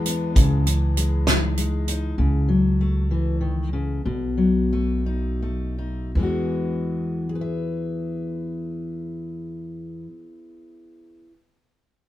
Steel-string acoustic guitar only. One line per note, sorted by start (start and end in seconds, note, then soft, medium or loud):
0.00 0.36 E2 medium
0.00 0.66 E3 medium
0.00 0.96 G#3 medium
0.06 0.36 B3 medium
0.35 0.66 C#3 medium
0.66 2.48 E3 medium
0.97 1.57 G#3 soft
1.28 1.88 D#4 medium
1.58 2.18 G#3 soft
1.89 2.15 D#4 medium
2.18 2.49 C#3 medium
2.48 3.10 F#3 medium
2.81 4.02 A3 soft
3.11 3.42 E3 medium
3.41 3.73 D#3 medium
3.73 4.05 C#3 medium
4.05 6.15 B2 medium
4.37 6.10 F#3 medium
4.73 5.41 A3 soft
5.06 5.77 D#4 soft
5.42 6.11 A3 soft
5.78 6.11 D#4 soft
6.15 10.06 E2 medium
6.15 10.08 E3 soft
6.15 7.29 G#3 soft
6.21 7.35 B3 soft
6.21 7.32 F#4 soft
7.29 11.20 G#4 medium
7.35 11.26 B4 medium
7.41 11.32 E5 medium